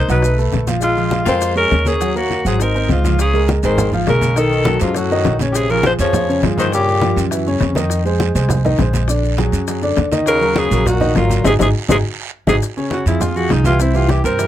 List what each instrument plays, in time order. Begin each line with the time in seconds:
0.08 upright bass B1, grand piano F#3 F#4 F#5, tenor saxophone D#4, alto saxophone B4, high bongo, high conga, short guiro, maracas
0.22 grand piano A3 A4 B4, high bongo, high conga, long guiro, maracas
0.37 grand piano A3 A4 B4, high conga, maracas
0.52 upright bass A#1, high bongo, low bongo, high conga, short guiro, maracas
0.67 grand piano F3 F4 F5, high bongo, high conga, short guiro, maracas
0.81 tenor saxophone G#3, alto saxophone F4, high bongo, high conga, long guiro, maracas
0.97 grand piano F3 F4 F5, high bongo, high conga, maracas
1.11 high bongo, high conga, short guiro, maracas
1.25 upright bass F2, grand piano G#3 G#4 A#4, tenor saxophone F4, alto saxophone C5, high bongo, high conga, short guiro, maracas
1.41 high bongo, high conga, long guiro, maracas
1.55 grand piano G#3 G#4 A#4, tenor saxophone C#4, alto saxophone A#4, high conga, maracas
1.71 upright bass D#2, high bongo, low bongo, high conga, short guiro, maracas
1.85 grand piano A#3 A#4 C#5, tenor saxophone C#4, alto saxophone G#4, high bongo, high conga, short guiro, maracas
2.01 grand piano F#3 F#4 F#5, high bongo, high conga, long guiro, maracas
2.15 grand piano A#3 A#4 C#5, tenor saxophone A#3, alto saxophone F#4, high bongo, high conga, maracas
2.30 high bongo, high conga, short guiro, maracas
2.45 upright bass G#1, grand piano F#3 F#4 F#5, tenor saxophone C4, alto saxophone G#4, high bongo, high conga, short guiro, maracas
2.60 grand piano C4 C5 D#5, tenor saxophone D#4, alto saxophone A#4, high bongo, high conga, long guiro, maracas
2.75 grand piano C4 C5 D#5, high conga, maracas
2.89 upright bass C#2, tenor saxophone G#2, alto saxophone F4, high bongo, low bongo, high conga, short guiro, maracas
3.04 grand piano F3 F4 F5, high bongo, high conga, short guiro, maracas
3.19 tenor saxophone C#3, alto saxophone G#4, high bongo, long guiro, maracas
3.34 grand piano G#3 G#4 A#4, high conga, maracas
3.49 high bongo, high conga, short guiro, maracas
3.63 upright bass G#1, tenor saxophone D#3, grand piano G#3 G#4 A#4, alto saxophone C5, short guiro, maracas
3.78 high bongo, high conga, low conga, long guiro, maracas
3.92 grand piano F3 F4 F5, high conga, low conga, maracas
4.07 upright bass B1, tenor saxophone C#3, grand piano G#3 G#4 A#4, alto saxophone A#4, high bongo, low bongo, high conga, short guiro, maracas
4.21 high conga, short guiro, maracas
4.36 tenor saxophone D#3, grand piano D#3 D#4 D#5, alto saxophone A4, high bongo, high conga, long guiro, maracas
4.51 high bongo, high conga, maracas
4.65 grand piano F#3 F#4 A4, high bongo, high conga, short guiro, maracas
4.80 upright bass F#2, tenor saxophone G#2, alto saxophone F4, high bongo, short guiro, maracas
4.94 tenor saxophone A2, grand piano F#3 F#4 A4, alto saxophone F#4, high bongo, high conga, long guiro, maracas
5.10 grand piano D#3 D#4 D#5, high conga, maracas
5.24 upright bass A#1, high bongo, low bongo, high conga, short guiro, maracas
5.39 grand piano C#3 C#4 C#5, high bongo, high conga, short guiro, maracas
5.52 tenor saxophone A2, alto saxophone G4 G#4, high bongo, long guiro, maracas
5.57 tenor saxophone C3
5.69 tenor saxophone C#3, grand piano F3 F4 G#4, alto saxophone A#4, high conga, maracas
5.83 tenor saxophone F3, alto saxophone C5, high bongo, high conga, short guiro, maracas
5.99 upright bass F2, grand piano F3 F4 G#4, tenor saxophone F3, alto saxophone C#5, short guiro, maracas
6.13 high bongo, high conga, low conga, long guiro, maracas
6.28 grand piano C#3 C#4 C#5, high conga, maracas
6.43 upright bass G2, grand piano F3 F4 G#4, high bongo, low bongo, high conga, short guiro, maracas
6.58 tenor saxophone D#3, alto saxophone C5, high conga, short guiro, maracas
6.72 tenor saxophone A#2, grand piano C#3 C#4 C#5, alto saxophone G4, high bongo, high conga, long guiro, maracas
6.88 high bongo, high conga, maracas
7.01 grand piano F3 F4 G4, high bongo, high conga, short guiro, maracas
7.16 upright bass F#2, high bongo, short guiro, maracas
7.31 grand piano E3 E4 F#4, high bongo, high conga, long guiro, maracas
7.46 grand piano C#3 C#4 C#5, high conga, maracas
7.60 upright bass F2, high bongo, low bongo, high conga, short guiro, maracas
7.75 grand piano D#3 D#4 D#5, high bongo, high conga, short guiro, maracas
7.90 high bongo, long guiro, maracas
8.05 grand piano G#3 G#4 C5, high conga, maracas
8.20 high bongo, high conga, short guiro, maracas
8.35 upright bass C2, grand piano G#3 G#4 C5, short guiro, maracas
8.49 high bongo, high conga, low conga, long guiro, maracas
8.65 grand piano D#3 D#4 D#5, high conga, low conga, maracas
8.79 upright bass A#1, grand piano G#3 G#4 C5, high bongo, low bongo, high conga, short guiro, maracas
8.93 high conga, short guiro, maracas
9.08 grand piano D3 D4 D5, high bongo, long guiro, maracas
9.23 high bongo, high conga, maracas
9.37 grand piano F#3 F#4 G#4, high bongo, high conga, short guiro, maracas
9.52 upright bass F#2, high bongo, short guiro, maracas
9.68 grand piano F#3 F#4 G#4, high bongo, high conga, long guiro, maracas
9.82 grand piano D3 D4 D5, high conga, maracas
9.97 upright bass D#2, high bongo, low bongo, high conga, short guiro, maracas
10.12 grand piano D#3 D#4 D#5, high bongo, high conga, short guiro, maracas
10.26 tenor saxophone C#3, alto saxophone A#4, high bongo, high conga, long guiro, maracas
10.41 grand piano F#3 F#4 A#4, high conga, maracas
10.56 tenor saxophone C#3, alto saxophone G#4, high bongo, high conga, short guiro, maracas
10.71 upright bass A#1, grand piano F#3 F#4 A#4, short guiro, maracas
10.86 tenor saxophone A#2, alto saxophone F#4, high bongo, high conga, low conga, long guiro, maracas
11.01 grand piano D#3 D#4 D#5, high conga, low conga, maracas
11.15 upright bass G#1, tenor saxophone A#2, grand piano F#3 F#4 A#4, alto saxophone F4, high bongo, low bongo, high conga, short guiro, maracas
11.29 high conga, short guiro, maracas
11.44 upright bass G#1, tenor saxophone C3, grand piano D#4 F#4 G#4, alto saxophone G#4, low bongo, high conga, long guiro, maracas
11.59 upright bass G#1, tenor saxophone C3, grand piano D#4 F#4 G#4, alto saxophone G#4, low bongo, high conga, long guiro, maracas
11.88 upright bass G#1, tenor saxophone C3, grand piano D#4 F#4 G#4, alto saxophone G#4, low bongo, high conga, long guiro, maracas
12.47 upright bass G#1, tenor saxophone C3, grand piano D#4 F#4 G#4, alto saxophone G#4, low bongo, high conga, long guiro, maracas
12.62 high bongo, high conga, long guiro, maracas
12.77 grand piano C#3 C#4 C#5, high conga, maracas
12.91 alto saxophone F#4, high bongo, high conga, short guiro, maracas
13.06 upright bass F2, grand piano F3 F4 G#4, alto saxophone E4, short guiro, maracas
13.21 alto saxophone F4, high bongo, high conga, low conga, long guiro, maracas
13.35 grand piano F3 F4 G#4, alto saxophone F#4, high conga, maracas
13.50 upright bass C2, alto saxophone D#4, high bongo, low bongo, high conga, short guiro, maracas
13.64 grand piano E3 E4 G4, alto saxophone F4, high conga, short guiro, maracas
13.80 grand piano C3 C4 C5, alto saxophone E4, high bongo, long guiro, maracas
13.94 grand piano E3 E4 G4, alto saxophone F4, high bongo, high conga, maracas
14.09 alto saxophone G4, high bongo, high conga, short guiro, maracas
14.24 upright bass G2, grand piano C3 C4 C5, alto saxophone A#4, high bongo, short guiro, maracas
14.39 grand piano E3 E4 G4, high bongo, high conga, long guiro, maracas